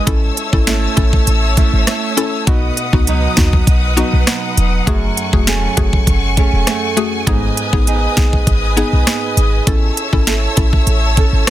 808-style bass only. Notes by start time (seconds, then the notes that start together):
0.07 A1
0.53 G#1
0.97 A1
1.27 A1
1.73 G#1
2.47 B1
2.93 C#2
3.38 D#2
3.67 B1
4.13 B1
4.57 E1
4.87 F#1
5.33 E1
5.77 F#1
6.07 F#1
6.53 E1
7.27 G#1
7.73 A1
8.17 B1
8.47 G#1
8.93 B1
9.37 G#1
9.67 A1
10.13 G#1
10.57 A1
10.87 A1
11.33 G#1